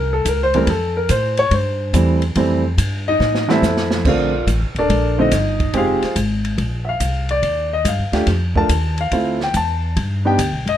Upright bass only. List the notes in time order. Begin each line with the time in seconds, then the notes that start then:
Already playing: C2
0.25 C#2
0.67 F2
1.10 A2
1.51 G2
1.93 E2
2.36 F2
2.78 G2
3.20 A2
3.62 F2
4.05 A#1
4.47 A1
4.61 F1
4.75 D1
4.89 A#1
5.31 G1
5.74 F1
6.03 muted upright bass stroke
6.16 G#1
6.58 A#1
7.00 C2
7.42 D#2
7.85 G2
7.99 D#2
8.12 D2
8.27 F2
8.69 D#2
9.12 D2
9.54 E2
9.97 G2
10.38 D2
10.52 B1
10.66 G1